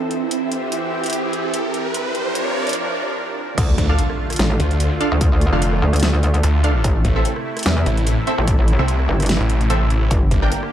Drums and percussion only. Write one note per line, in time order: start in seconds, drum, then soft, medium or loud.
0.11 closed hi-hat soft
0.31 closed hi-hat medium
0.52 closed hi-hat medium
0.72 closed hi-hat medium
1.04 closed hi-hat soft
1.06 closed hi-hat medium
1.10 closed hi-hat medium
1.13 closed hi-hat medium
1.33 closed hi-hat medium
1.54 closed hi-hat medium
1.74 closed hi-hat soft
1.94 closed hi-hat medium
2.15 closed hi-hat soft
2.35 closed hi-hat medium
2.67 closed hi-hat soft
2.69 closed hi-hat medium
2.73 closed hi-hat medium
3.58 kick loud
3.58 closed hi-hat medium
3.58 crash loud
3.78 kick medium
3.78 closed hi-hat medium
3.99 closed hi-hat medium
4.10 cross-stick medium
4.30 cross-stick medium
4.30 closed hi-hat soft
4.33 closed hi-hat medium
4.36 snare loud
4.36 closed hi-hat medium
4.39 closed hi-hat medium
4.60 closed hi-hat medium
4.71 closed hi-hat soft
4.80 closed hi-hat medium
5.01 closed hi-hat medium
5.21 kick loud
5.21 closed hi-hat medium
5.41 closed hi-hat medium
5.62 closed hi-hat medium
5.73 cross-stick medium
5.93 cross-stick medium
5.93 closed hi-hat medium
5.96 closed hi-hat medium
6.00 snare loud
6.00 closed hi-hat medium
6.03 closed hi-hat medium
6.23 closed hi-hat medium
6.34 closed hi-hat soft
6.43 closed hi-hat medium
6.64 closed hi-hat medium
6.84 kick loud
6.84 closed hi-hat medium
7.05 kick medium
7.05 closed hi-hat medium
7.25 closed hi-hat medium
7.36 cross-stick medium
7.57 cross-stick soft
7.57 closed hi-hat soft
7.59 closed hi-hat medium
7.63 snare loud
7.63 closed hi-hat medium
7.66 closed hi-hat medium
7.86 closed hi-hat medium
7.97 closed hi-hat soft
8.07 closed hi-hat medium
8.27 closed hi-hat medium
8.48 kick loud
8.48 closed hi-hat medium
8.68 closed hi-hat soft
8.88 closed hi-hat medium
9.00 cross-stick medium
9.20 cross-stick medium
9.20 closed hi-hat medium
9.22 closed hi-hat medium
9.26 snare loud
9.26 closed hi-hat medium
9.29 closed hi-hat medium
9.50 closed hi-hat medium
9.61 closed hi-hat soft
9.70 closed hi-hat medium
9.90 closed hi-hat medium
10.11 kick loud
10.11 closed hi-hat medium
10.31 kick medium
10.31 closed hi-hat medium
10.52 closed hi-hat medium
10.63 cross-stick medium